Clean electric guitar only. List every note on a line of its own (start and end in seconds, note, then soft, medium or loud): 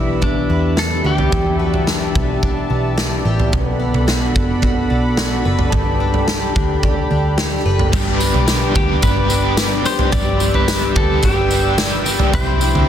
0.00 0.23 E4 medium
0.24 0.80 D4 medium
0.79 1.06 A4 medium
1.06 1.59 G4 medium
1.59 1.84 F#4 medium
8.76 9.01 G4 medium
9.03 9.86 B4 medium
9.86 10.12 C5 medium
10.12 10.55 D5 loud
10.55 10.93 B4 medium
10.97 11.25 A4 medium
11.25 11.75 G4 medium
12.35 12.89 C5 loud